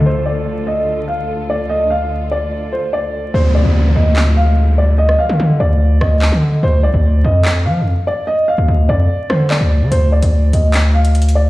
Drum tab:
HH |------------------------------------------------|------------------------------------------------|------------------------------------------------|------------------------------------------------|
CP |------------------------------------------------|------------------------------------------------|------------------------x-----------------------|------------------------------------x-----------|
SD |------------------------------------------------|------------------------------------------------|------------------------------------------------|---r--------------------------r-----------------|

HH |------------------------------------------------|------------------------------------------------|x--------x--------x-----x--------x--x-x-x-------|
CP |------------------------x-----------------------|------------------------------------x-----------|------------------------x-----------------------|
SD |------------------------------------------------|------------------------------r-----------------|------------------------------------------------|